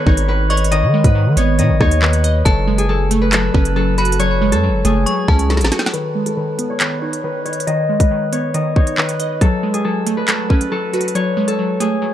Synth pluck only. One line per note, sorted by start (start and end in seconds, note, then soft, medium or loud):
0.00 0.27 D#3 medium
0.00 0.28 G#3 medium
0.00 0.72 B3 medium
0.06 1.15 D#4 loud
0.28 0.70 D#3 medium
0.50 1.59 D#5 medium
0.72 1.14 D#3 loud
0.94 2.02 G#3 medium
1.15 1.58 D#3 medium
1.37 2.46 B3 medium
1.59 2.01 D#3 loud
1.81 2.46 D#4 medium
2.02 2.46 D#3 medium
2.24 2.46 D#5 loud
2.46 2.88 F#3 medium
2.67 3.76 G#3 medium
2.89 3.32 F#3 medium
3.11 4.20 A3 medium
3.33 3.75 F#3 loud
3.54 4.63 C#4 medium
3.76 4.18 F#3 medium
3.98 5.07 F#4 medium
4.19 4.62 F#3 medium
4.42 5.50 G#3 medium
4.63 5.05 F#3 medium
4.85 5.93 A3 medium
5.07 5.49 F#3 medium
5.28 5.94 C#4 loud
5.50 5.94 F#3 medium
5.72 5.94 F#4 loud
5.93 6.36 D#3 medium
6.15 7.24 G#3 medium
6.37 6.79 D#3 medium
6.59 7.67 B3 medium
6.80 7.23 D#3 medium
7.02 8.11 D#4 medium
7.24 7.66 D#3 medium
7.46 8.54 D#5 medium
7.67 8.10 D#3 loud
7.89 8.98 G#3 medium
8.11 8.53 D#3 medium
8.33 9.41 B3 medium
8.54 8.97 D#3 medium
8.76 9.41 D#4 medium
8.98 9.41 D#3 medium
9.20 9.41 D#5 loud
9.42 9.84 F#3 medium
9.63 10.72 G#3 medium
9.85 10.27 F#3 medium
10.07 11.15 A3 medium
10.28 10.70 F#3 loud
10.50 11.59 C#4 medium
10.72 11.14 F#3 medium
10.93 12.02 F#4 medium
11.15 11.58 F#3 medium
11.37 12.14 G#3 medium
11.59 12.01 F#3 medium
11.80 12.14 A3 medium
12.02 12.14 F#3 medium